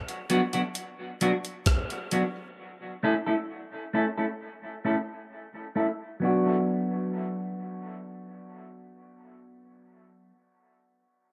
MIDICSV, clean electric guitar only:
0, 0, Header, 1, 2, 480
1, 0, Start_track
1, 0, Key_signature, 2, "minor"
1, 0, Tempo, 909504
1, 1358, Time_signature, 4, 2, 24, 8
1, 5977, End_track
2, 0, Start_track
2, 0, Title_t, "Clean electric guitar"
2, 0, Program_c, 0, 27
2, 157, Note_on_c, 0, 54, 80
2, 159, Note_on_c, 0, 59, 78
2, 161, Note_on_c, 0, 62, 67
2, 164, Note_on_c, 0, 66, 84
2, 209, Note_off_c, 0, 54, 0
2, 210, Note_off_c, 0, 59, 0
2, 211, Note_off_c, 0, 62, 0
2, 213, Note_off_c, 0, 66, 0
2, 282, Note_on_c, 0, 66, 67
2, 286, Note_on_c, 0, 62, 46
2, 287, Note_on_c, 0, 59, 44
2, 290, Note_on_c, 0, 54, 46
2, 320, Note_off_c, 0, 66, 0
2, 322, Note_off_c, 0, 59, 0
2, 322, Note_off_c, 0, 62, 0
2, 324, Note_off_c, 0, 54, 0
2, 640, Note_on_c, 0, 54, 80
2, 643, Note_on_c, 0, 59, 69
2, 645, Note_on_c, 0, 62, 82
2, 647, Note_on_c, 0, 66, 90
2, 690, Note_off_c, 0, 54, 0
2, 692, Note_off_c, 0, 59, 0
2, 693, Note_off_c, 0, 62, 0
2, 694, Note_off_c, 0, 66, 0
2, 1118, Note_on_c, 0, 54, 63
2, 1122, Note_on_c, 0, 59, 65
2, 1124, Note_on_c, 0, 62, 74
2, 1126, Note_on_c, 0, 66, 70
2, 1170, Note_off_c, 0, 54, 0
2, 1172, Note_off_c, 0, 59, 0
2, 1173, Note_off_c, 0, 62, 0
2, 1174, Note_off_c, 0, 66, 0
2, 1599, Note_on_c, 0, 57, 80
2, 1603, Note_on_c, 0, 61, 95
2, 1604, Note_on_c, 0, 64, 87
2, 1608, Note_on_c, 0, 69, 108
2, 1650, Note_off_c, 0, 57, 0
2, 1652, Note_off_c, 0, 61, 0
2, 1653, Note_off_c, 0, 64, 0
2, 1654, Note_off_c, 0, 69, 0
2, 1723, Note_on_c, 0, 69, 70
2, 1726, Note_on_c, 0, 64, 66
2, 1729, Note_on_c, 0, 61, 53
2, 1732, Note_on_c, 0, 57, 50
2, 1760, Note_off_c, 0, 69, 0
2, 1762, Note_off_c, 0, 64, 0
2, 1763, Note_off_c, 0, 61, 0
2, 1765, Note_off_c, 0, 57, 0
2, 2077, Note_on_c, 0, 57, 67
2, 2082, Note_on_c, 0, 61, 62
2, 2083, Note_on_c, 0, 64, 80
2, 2085, Note_on_c, 0, 69, 72
2, 2129, Note_off_c, 0, 57, 0
2, 2131, Note_off_c, 0, 61, 0
2, 2132, Note_off_c, 0, 64, 0
2, 2133, Note_off_c, 0, 69, 0
2, 2203, Note_on_c, 0, 69, 57
2, 2206, Note_on_c, 0, 64, 51
2, 2208, Note_on_c, 0, 61, 54
2, 2211, Note_on_c, 0, 57, 42
2, 2241, Note_off_c, 0, 69, 0
2, 2242, Note_off_c, 0, 64, 0
2, 2243, Note_off_c, 0, 61, 0
2, 2244, Note_off_c, 0, 57, 0
2, 2557, Note_on_c, 0, 57, 76
2, 2562, Note_on_c, 0, 61, 78
2, 2564, Note_on_c, 0, 64, 77
2, 2566, Note_on_c, 0, 69, 76
2, 2609, Note_off_c, 0, 57, 0
2, 2612, Note_off_c, 0, 61, 0
2, 2612, Note_off_c, 0, 64, 0
2, 2614, Note_off_c, 0, 69, 0
2, 3037, Note_on_c, 0, 57, 79
2, 3040, Note_on_c, 0, 61, 69
2, 3042, Note_on_c, 0, 64, 80
2, 3044, Note_on_c, 0, 69, 76
2, 3089, Note_off_c, 0, 57, 0
2, 3090, Note_off_c, 0, 61, 0
2, 3092, Note_off_c, 0, 64, 0
2, 3093, Note_off_c, 0, 69, 0
2, 3271, Note_on_c, 0, 54, 62
2, 3282, Note_on_c, 0, 59, 82
2, 3290, Note_on_c, 0, 62, 83
2, 3298, Note_on_c, 0, 66, 78
2, 5443, Note_off_c, 0, 54, 0
2, 5453, Note_off_c, 0, 59, 0
2, 5462, Note_off_c, 0, 62, 0
2, 5470, Note_off_c, 0, 66, 0
2, 5977, End_track
0, 0, End_of_file